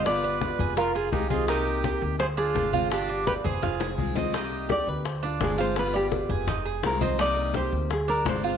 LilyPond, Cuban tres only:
\new Staff \with { instrumentName = "Cuban tres" } { \time 4/4 \key c \minor \tempo 4 = 168 f'8 d''4 aes'8 f'8 aes'4 ees''8 | ees'4 g'8 r4 d'4 f'8~ | f'8 d''4 aes'8 f'8 aes'4 ees''8 | ees'4 g'8 r4 d'4 f'8~ |
f'8 d''4 aes'8 ees'8 aes'4 ees''8 | ees'4 g'8 r4 d'4 f'8 | }